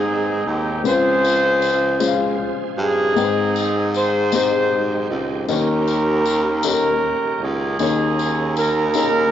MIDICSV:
0, 0, Header, 1, 6, 480
1, 0, Start_track
1, 0, Key_signature, -4, "major"
1, 0, Tempo, 771208
1, 535, Time_signature, 6, 3, 24, 8
1, 5797, End_track
2, 0, Start_track
2, 0, Title_t, "Horn section"
2, 0, Program_c, 0, 61
2, 0, Note_on_c, 0, 60, 74
2, 0, Note_on_c, 0, 63, 69
2, 0, Note_on_c, 0, 68, 94
2, 273, Note_off_c, 0, 68, 0
2, 307, Note_on_c, 0, 67, 88
2, 511, Note_off_c, 0, 60, 0
2, 512, Note_off_c, 0, 63, 0
2, 537, Note_on_c, 0, 65, 87
2, 538, Note_on_c, 0, 68, 90
2, 541, Note_off_c, 0, 67, 0
2, 544, Note_on_c, 0, 72, 127
2, 1544, Note_off_c, 0, 65, 0
2, 1545, Note_off_c, 0, 68, 0
2, 1572, Note_off_c, 0, 72, 0
2, 1739, Note_on_c, 0, 60, 71
2, 1739, Note_on_c, 0, 63, 72
2, 1745, Note_on_c, 0, 68, 98
2, 2433, Note_off_c, 0, 60, 0
2, 2433, Note_off_c, 0, 63, 0
2, 2436, Note_off_c, 0, 68, 0
2, 2467, Note_on_c, 0, 72, 92
2, 2702, Note_off_c, 0, 72, 0
2, 2707, Note_on_c, 0, 67, 70
2, 2710, Note_on_c, 0, 63, 66
2, 2713, Note_on_c, 0, 72, 97
2, 3160, Note_off_c, 0, 72, 0
2, 3397, Note_off_c, 0, 67, 0
2, 3398, Note_off_c, 0, 63, 0
2, 3427, Note_on_c, 0, 61, 68
2, 3427, Note_on_c, 0, 67, 77
2, 3431, Note_on_c, 0, 70, 92
2, 4116, Note_off_c, 0, 61, 0
2, 4116, Note_off_c, 0, 67, 0
2, 4118, Note_off_c, 0, 70, 0
2, 4144, Note_on_c, 0, 67, 70
2, 4145, Note_on_c, 0, 70, 94
2, 4147, Note_on_c, 0, 61, 68
2, 4595, Note_off_c, 0, 70, 0
2, 4614, Note_off_c, 0, 61, 0
2, 4622, Note_on_c, 0, 61, 66
2, 4623, Note_on_c, 0, 68, 94
2, 4834, Note_off_c, 0, 67, 0
2, 5312, Note_off_c, 0, 61, 0
2, 5313, Note_off_c, 0, 68, 0
2, 5342, Note_on_c, 0, 70, 83
2, 5575, Note_off_c, 0, 70, 0
2, 5583, Note_on_c, 0, 70, 98
2, 5797, Note_off_c, 0, 70, 0
2, 5797, End_track
3, 0, Start_track
3, 0, Title_t, "Upright piano"
3, 0, Program_c, 1, 0
3, 0, Control_c, 1, 64, 127
3, 0, Note_on_c, 1, 44, 55
3, 0, Note_on_c, 1, 56, 62
3, 0, Note_on_c, 1, 60, 56
3, 0, Note_on_c, 1, 63, 60
3, 0, Note_on_c, 1, 67, 65
3, 0, Note_on_c, 1, 71, 56
3, 0, Note_on_c, 1, 72, 64
3, 0, Note_on_c, 1, 79, 58
3, 327, Note_off_c, 1, 56, 0
3, 327, Note_off_c, 1, 60, 0
3, 328, Note_off_c, 1, 63, 0
3, 330, Note_off_c, 1, 79, 0
3, 351, Note_off_c, 1, 72, 0
3, 520, Note_on_c, 1, 56, 74
3, 521, Note_on_c, 1, 60, 61
3, 523, Note_on_c, 1, 49, 61
3, 523, Note_on_c, 1, 61, 67
3, 527, Note_off_c, 1, 71, 0
3, 527, Note_on_c, 1, 65, 66
3, 527, Note_on_c, 1, 71, 62
3, 543, Control_c, 1, 64, 0
3, 545, Note_off_c, 1, 67, 0
3, 549, Note_off_c, 1, 44, 0
3, 567, Note_on_c, 1, 72, 76
3, 572, Note_off_c, 1, 71, 0
3, 666, Control_c, 1, 64, 127
3, 1045, Note_off_c, 1, 56, 0
3, 1046, Note_off_c, 1, 60, 0
3, 1047, Note_off_c, 1, 61, 0
3, 1049, Note_off_c, 1, 65, 0
3, 1069, Note_off_c, 1, 72, 0
3, 1225, Note_off_c, 1, 49, 0
3, 1241, Note_on_c, 1, 56, 78
3, 1243, Note_on_c, 1, 72, 70
3, 1246, Note_on_c, 1, 61, 70
3, 1248, Note_on_c, 1, 65, 72
3, 1289, Note_on_c, 1, 77, 87
3, 1294, Note_off_c, 1, 72, 0
3, 1766, Note_off_c, 1, 56, 0
3, 1768, Note_off_c, 1, 61, 0
3, 1769, Note_off_c, 1, 65, 0
3, 1790, Note_off_c, 1, 77, 0
3, 1960, Note_on_c, 1, 56, 78
3, 1962, Note_on_c, 1, 60, 75
3, 1965, Note_on_c, 1, 44, 57
3, 1965, Note_on_c, 1, 63, 65
3, 1969, Note_on_c, 1, 79, 75
3, 1970, Note_on_c, 1, 71, 67
3, 1986, Control_c, 1, 64, 0
3, 2012, Note_on_c, 1, 72, 76
3, 2014, Note_off_c, 1, 71, 0
3, 2086, Control_c, 1, 64, 127
3, 2486, Note_off_c, 1, 56, 0
3, 2487, Note_off_c, 1, 60, 0
3, 2488, Note_off_c, 1, 63, 0
3, 2490, Note_off_c, 1, 79, 0
3, 2511, Note_off_c, 1, 72, 0
3, 2666, Note_off_c, 1, 44, 0
3, 2688, Note_on_c, 1, 56, 65
3, 2692, Note_on_c, 1, 60, 59
3, 2693, Note_on_c, 1, 63, 60
3, 2693, Note_on_c, 1, 67, 64
3, 2698, Note_on_c, 1, 72, 70
3, 3209, Note_off_c, 1, 56, 0
3, 3211, Note_off_c, 1, 60, 0
3, 3211, Note_off_c, 1, 67, 0
3, 3212, Note_off_c, 1, 63, 0
3, 3214, Note_off_c, 1, 72, 0
3, 3410, Note_on_c, 1, 58, 72
3, 3412, Note_on_c, 1, 61, 66
3, 3415, Note_on_c, 1, 51, 64
3, 3415, Note_on_c, 1, 63, 62
3, 3415, Note_on_c, 1, 67, 64
3, 3419, Note_on_c, 1, 73, 77
3, 3425, Control_c, 1, 64, 0
3, 3534, Control_c, 1, 64, 127
3, 3930, Note_off_c, 1, 58, 0
3, 3931, Note_off_c, 1, 61, 0
3, 3932, Note_off_c, 1, 67, 0
3, 3933, Note_off_c, 1, 63, 0
3, 3934, Note_off_c, 1, 73, 0
3, 4110, Note_off_c, 1, 51, 0
3, 4128, Note_on_c, 1, 58, 61
3, 4131, Note_on_c, 1, 61, 62
3, 4133, Note_on_c, 1, 63, 56
3, 4134, Note_on_c, 1, 67, 56
3, 4137, Note_on_c, 1, 69, 55
3, 4177, Note_off_c, 1, 69, 0
3, 4177, Note_on_c, 1, 70, 69
3, 4648, Note_off_c, 1, 58, 0
3, 4650, Note_off_c, 1, 61, 0
3, 4651, Note_off_c, 1, 63, 0
3, 4651, Note_off_c, 1, 67, 0
3, 4672, Note_off_c, 1, 70, 0
3, 4851, Note_on_c, 1, 58, 71
3, 4854, Note_on_c, 1, 61, 67
3, 4855, Note_on_c, 1, 63, 62
3, 4856, Note_on_c, 1, 51, 60
3, 4857, Note_on_c, 1, 68, 65
3, 4860, Note_on_c, 1, 73, 85
3, 4862, Control_c, 1, 64, 0
3, 4958, Control_c, 1, 64, 127
3, 5369, Note_off_c, 1, 58, 0
3, 5370, Note_off_c, 1, 61, 0
3, 5371, Note_off_c, 1, 63, 0
3, 5372, Note_off_c, 1, 68, 0
3, 5373, Note_off_c, 1, 73, 0
3, 5549, Note_off_c, 1, 51, 0
3, 5565, Note_on_c, 1, 58, 69
3, 5568, Note_on_c, 1, 61, 62
3, 5569, Note_on_c, 1, 63, 61
3, 5570, Note_on_c, 1, 68, 59
3, 5574, Note_on_c, 1, 70, 67
3, 5797, Note_off_c, 1, 58, 0
3, 5797, Note_off_c, 1, 61, 0
3, 5797, Note_off_c, 1, 63, 0
3, 5797, Note_off_c, 1, 68, 0
3, 5797, Note_off_c, 1, 70, 0
3, 5797, End_track
4, 0, Start_track
4, 0, Title_t, "Tonewheel organ"
4, 0, Program_c, 2, 16
4, 0, Note_on_c, 2, 51, 64
4, 0, Note_on_c, 2, 56, 58
4, 0, Note_on_c, 2, 60, 54
4, 0, Note_on_c, 2, 79, 65
4, 510, Note_off_c, 2, 56, 0
4, 510, Note_off_c, 2, 60, 0
4, 510, Note_off_c, 2, 79, 0
4, 512, Note_off_c, 2, 51, 0
4, 540, Note_on_c, 2, 49, 56
4, 542, Note_on_c, 2, 53, 64
4, 545, Note_on_c, 2, 72, 58
4, 546, Note_on_c, 2, 68, 69
4, 1955, Note_off_c, 2, 49, 0
4, 1955, Note_off_c, 2, 53, 0
4, 1957, Note_off_c, 2, 68, 0
4, 1957, Note_off_c, 2, 72, 0
4, 1966, Note_on_c, 2, 56, 57
4, 1967, Note_on_c, 2, 51, 63
4, 1967, Note_on_c, 2, 60, 63
4, 1968, Note_on_c, 2, 79, 74
4, 3386, Note_off_c, 2, 56, 0
4, 3387, Note_off_c, 2, 51, 0
4, 3387, Note_off_c, 2, 60, 0
4, 3387, Note_off_c, 2, 79, 0
4, 3421, Note_on_c, 2, 66, 53
4, 3422, Note_on_c, 2, 58, 55
4, 3425, Note_on_c, 2, 51, 67
4, 3425, Note_on_c, 2, 61, 55
4, 3459, Note_off_c, 2, 66, 0
4, 3465, Note_on_c, 2, 79, 67
4, 4833, Note_off_c, 2, 58, 0
4, 4834, Note_off_c, 2, 51, 0
4, 4834, Note_off_c, 2, 61, 0
4, 4854, Note_off_c, 2, 79, 0
4, 4859, Note_on_c, 2, 58, 58
4, 4859, Note_on_c, 2, 61, 56
4, 4860, Note_on_c, 2, 68, 65
4, 4865, Note_on_c, 2, 51, 67
4, 5797, Note_off_c, 2, 51, 0
4, 5797, Note_off_c, 2, 58, 0
4, 5797, Note_off_c, 2, 61, 0
4, 5797, Note_off_c, 2, 68, 0
4, 5797, End_track
5, 0, Start_track
5, 0, Title_t, "Baritone saxophone"
5, 0, Program_c, 3, 67
5, 0, Note_on_c, 3, 44, 96
5, 267, Note_off_c, 3, 44, 0
5, 286, Note_on_c, 3, 39, 79
5, 529, Note_on_c, 3, 37, 94
5, 538, Note_off_c, 3, 39, 0
5, 1540, Note_off_c, 3, 37, 0
5, 1727, Note_on_c, 3, 43, 94
5, 1953, Note_off_c, 3, 43, 0
5, 1968, Note_on_c, 3, 44, 104
5, 3148, Note_off_c, 3, 44, 0
5, 3173, Note_on_c, 3, 37, 78
5, 3395, Note_off_c, 3, 37, 0
5, 3411, Note_on_c, 3, 39, 102
5, 4419, Note_off_c, 3, 39, 0
5, 4612, Note_on_c, 3, 37, 79
5, 4834, Note_off_c, 3, 37, 0
5, 4849, Note_on_c, 3, 39, 99
5, 5797, Note_off_c, 3, 39, 0
5, 5797, End_track
6, 0, Start_track
6, 0, Title_t, "Drums"
6, 529, Note_on_c, 9, 54, 55
6, 592, Note_off_c, 9, 54, 0
6, 775, Note_on_c, 9, 54, 55
6, 837, Note_off_c, 9, 54, 0
6, 1008, Note_on_c, 9, 54, 48
6, 1071, Note_off_c, 9, 54, 0
6, 1246, Note_on_c, 9, 54, 79
6, 1308, Note_off_c, 9, 54, 0
6, 1970, Note_on_c, 9, 54, 51
6, 2032, Note_off_c, 9, 54, 0
6, 2214, Note_on_c, 9, 54, 51
6, 2276, Note_off_c, 9, 54, 0
6, 2454, Note_on_c, 9, 54, 51
6, 2516, Note_off_c, 9, 54, 0
6, 2688, Note_on_c, 9, 54, 85
6, 2750, Note_off_c, 9, 54, 0
6, 3414, Note_on_c, 9, 54, 55
6, 3476, Note_off_c, 9, 54, 0
6, 3657, Note_on_c, 9, 54, 51
6, 3720, Note_off_c, 9, 54, 0
6, 3892, Note_on_c, 9, 54, 52
6, 3955, Note_off_c, 9, 54, 0
6, 4126, Note_on_c, 9, 54, 82
6, 4188, Note_off_c, 9, 54, 0
6, 4850, Note_on_c, 9, 54, 53
6, 4912, Note_off_c, 9, 54, 0
6, 5098, Note_on_c, 9, 54, 50
6, 5161, Note_off_c, 9, 54, 0
6, 5332, Note_on_c, 9, 54, 47
6, 5394, Note_off_c, 9, 54, 0
6, 5562, Note_on_c, 9, 54, 84
6, 5625, Note_off_c, 9, 54, 0
6, 5797, End_track
0, 0, End_of_file